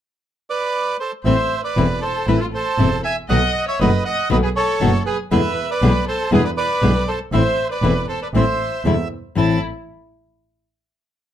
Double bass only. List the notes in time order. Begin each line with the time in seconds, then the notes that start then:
1.25 A1
1.77 E1
2.27 A1
2.78 E1
3.30 B1
3.80 F#1
4.31 B1
4.81 F#1
5.32 E2
5.82 B1
6.32 E2
6.82 B1
7.32 A1
7.82 E1
8.33 A1
8.84 E2
9.36 A1